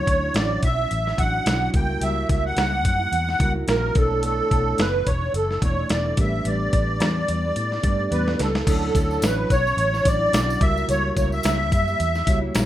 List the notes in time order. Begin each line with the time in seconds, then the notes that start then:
Already playing: F#3 D4 E4 C#5
0.05 D2 D3 F#3 C#4 E4, kick, closed hi-hat
0.33 A1 D3 F#3 C#4 E4 D5, snare, closed hi-hat
0.62 B1 D3 F#3 C#4 E4 E5, kick, closed hi-hat
0.76 F#3 C#4 E4
0.91 A1, closed hi-hat
1.07 snare
1.16 A1 D3 F#3 C#4 D4 E4 F#4 F#5, kick, closed hi-hat
1.21 E4
1.33 F#3 C#4 E4
1.46 B1 D3 F#3 C#4 E4, snare, closed hi-hat
1.73 C#2 C#3 G3 A#3 E4 F#4 A#4 G5, kick, closed hi-hat
1.88 G3 A#3 E4
2.01 C#2 C#3 G3 A#3 E4 E5, closed hi-hat
2.29 C#2 C#3 G3 A#3 E4 E5, kick, closed hi-hat
2.46 F#5
2.56 C#2 C#3 G3 A#3 E4, snare, closed hi-hat
2.83 F#2 C#3 G3 A#3 E4, kick, closed hi-hat
2.98 G3 A#3 E4
3.12 E2, closed hi-hat
3.29 snare
3.39 C#2 C#3 G3 A#3 E4 F#4 A#4, kick, closed hi-hat
3.43 E4
3.55 G3 A#3 E4
3.67 A#1 C#3 G3 A#3 E4 A#4, snare, closed hi-hat
3.94 B1 B2 E3 A3 D4 E4 A4 C#5, kick, closed hi-hat
3.99 D4
4.10 E3 A3 D4
4.23 B2 E3 A3 D4 A4, closed hi-hat
4.50 B1 B2 E3 A3 D4, kick, closed hi-hat
4.78 F#1 B2 E3 A3 D4 B4, snare, closed hi-hat
5.06 E1 B2 E3 A3 D4 C#5, kick, closed hi-hat
5.21 E3 A3 D4
5.34 F#1 A4, closed hi-hat
5.51 snare
5.61 E1 B2 E3 A3 D4 E4 C#5 D5, kick, closed hi-hat
5.65 D4
5.77 E3 A3 D4
5.89 E1 B2 E3 A3 D4 D5, snare, closed hi-hat
6.16 A1 A2 G3 A3 B3 D4 G4 A#4, kick, closed hi-hat
6.20 E5
6.25 B4
6.32 B3 D4
6.45 A1 A2 G3 B3 D4 D5, closed hi-hat
6.72 A1 A2 G3 B3 D4, kick, closed hi-hat
7.00 E2 A2 G3 B3 D4, snare, closed hi-hat
7.27 E2 A2 G3 B3 D4, closed hi-hat
7.43 G3 B3 D4
7.56 A2, closed hi-hat
7.72 snare
7.82 G2 A2 G3 A3 B3 D4 G4 D5, kick, closed hi-hat
7.98 G3 B3 D4
8.11 E2 A2 G3 B3 D4 B4, closed hi-hat
8.28 snare
8.38 C#2 A2 G3 B3 D4 A4, snare, closed hi-hat
8.53 G3 B3 D4, snare
8.65 D2 D3 F#3 C#4 D4 E4 A4 C#5, kick, closed hi-hat, crash
8.69 tambourine
8.94 D2 D3 F#3 C#4 E4, kick, closed hi-hat, tambourine
9.11 tambourine
9.22 A1 D3 F#3 C#4 E4 B4, snare, closed hi-hat, tambourine
9.49 B1 D3 F#3 C#4 E4 C#5, kick, closed hi-hat, tambourine
9.64 F#3 C#4 E4, tambourine
9.77 A1, closed hi-hat, tambourine
9.94 snare, tambourine
10.03 A1 D3 F#3 D4 E4 D5, kick, closed hi-hat
10.07 C#4 E4, tambourine
10.20 F#3 C#4 E4
10.32 B1 D3 F#3 C#4 E4, snare, closed hi-hat, tambourine
10.50 tambourine
10.59 C#2 C#3 G3 A#3 E4 F#4 A#4 E5, kick, closed hi-hat
10.63 E4
10.76 G3 A#3 E4, tambourine
10.88 C#2 C#3 G3 A#3 E4 C#5, closed hi-hat, tambourine
11.16 C#2 C#3 G3 A#3 E4 C#5, kick, closed hi-hat, tambourine
11.32 E5, tambourine
11.43 C#2 C#3 G3 A#3 E4, snare, closed hi-hat, tambourine
11.71 F#2 C#3 G3 A#3 E4, kick, closed hi-hat, tambourine
11.87 G3 A#3 E4, tambourine
12.00 E2, closed hi-hat, tambourine
12.15 snare, tambourine
12.26 C#2 C#3 G3 A#3 E4 F#4 C#5, kick, closed hi-hat, tambourine
12.41 G3 A#3 E4
12.54 A#1 C#3 G3 A#3 E4, snare, closed hi-hat, tambourine